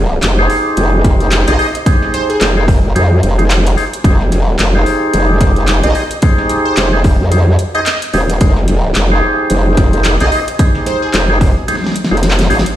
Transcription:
Already playing: F1
0.23 F1, clap, closed hi-hat
0.39 D#4 G4 G#4 C5
0.50 open hi-hat
0.77 F1, closed hi-hat
1.04 F1, kick, snare, closed hi-hat
1.20 closed hi-hat
1.32 clap, closed hi-hat
1.48 A#1 D#4 G4 G#4 C5 D#5, closed hi-hat
1.59 D#4 G4 G#4 C5, open hi-hat
1.75 closed hi-hat
1.86 D#4 G4 G#4 C5, kick, closed hi-hat
2.02 snare
2.14 C5, snare, closed hi-hat
2.30 G#4, closed hi-hat
2.41 F1 G#4, clap, closed hi-hat
2.57 D#4 G4 G#4 C5
2.68 kick, open hi-hat
2.84 F1
2.95 F2 D#4 G4 G#4 C5, closed hi-hat
3.23 F1, closed hi-hat
3.38 D#4 G4 G#4 C5, closed hi-hat
3.50 clap, closed hi-hat
3.67 closed hi-hat
3.77 D#4 G4 G#4 C5, open hi-hat
3.93 closed hi-hat
4.04 F1 D#4 G4 G#4 C5, kick, closed hi-hat
4.21 snare
4.32 snare, closed hi-hat
4.59 F1, clap, closed hi-hat
4.75 D#4 G4 G#4 C5
4.86 open hi-hat
5.13 F1, closed hi-hat
5.41 F1, kick, snare, closed hi-hat
5.56 closed hi-hat
5.68 clap, closed hi-hat
5.83 A#1 D#4 G4 G#4 C5 D#5, closed hi-hat
5.95 D#4 G4 G#4 C5, open hi-hat
6.11 closed hi-hat
6.22 D#4 G4 G#4 C5, kick, closed hi-hat
6.38 snare
6.49 snare, closed hi-hat
6.65 C5
6.77 F1 C5, clap, closed hi-hat
6.93 D#4 G4 G#4 C5
7.04 kick, open hi-hat
7.20 F2
7.32 D#4 G4 G#4 C5, closed hi-hat
7.59 closed hi-hat
7.75 D#4 G4 G#4 C5 D#5, closed hi-hat
7.86 D#5, clap, closed hi-hat
8.02 closed hi-hat
8.13 D#1 D#4 G4 G#4 C5, open hi-hat
8.30 closed hi-hat
8.41 F1 D#4 G4 G#4 C5, kick, closed hi-hat
8.56 snare
8.68 snare, closed hi-hat
8.95 F1, clap, closed hi-hat
9.12 D#4 G4 G#4 C5
9.50 F1, closed hi-hat
9.77 F1, kick, snare, closed hi-hat
9.93 closed hi-hat
10.04 clap, closed hi-hat
10.20 A#1 D#4 G4 G#4 C5 D#5, closed hi-hat
10.32 D#4 G4 G#4 C5, open hi-hat
10.48 closed hi-hat
10.59 D#4 G4 G#4 C5, kick, closed hi-hat
10.75 snare
10.86 C5, snare, closed hi-hat
11.02 G#4
11.14 F1 G#4, clap, closed hi-hat
11.30 D#4 G4 G#4 C5
11.41 kick, open hi-hat
11.68 D#4 G4 G#4 C5, snare, closed hi-hat
11.74 snare
11.77 snare
11.84 snare
11.86 snare
11.92 snare, closed hi-hat
12.05 snare
12.11 F1 D#4 G4 G#4 C5
12.17 closed hi-hat
12.23 snare, closed hi-hat
12.31 clap
12.39 snare, closed hi-hat
12.50 G#1 D#4 G4 G#4 C5, open hi-hat
12.59 snare
12.66 closed hi-hat

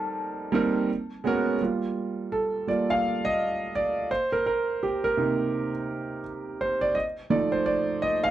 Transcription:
Already playing: G3 A#3 C4 D#4 A#4 A5
0.52 G3 A#3 C4 D#4 A#4
1.24 G#3 B3 C#4 F#4 A#4
1.61 G3 A#3 F4
2.32 A4
2.67 G3 A#3 F4 D5
2.90 F5
3.25 D#5
3.75 D5
4.11 C5
4.32 A#4
4.46 A#4
4.83 G4
5.04 A#4
5.17 C3 A#3 D#4
6.61 C5
6.81 D5
6.95 D#5
7.30 F3 A3 D#4 D5
7.52 C5
7.66 D5
8.02 D#5
8.24 F5

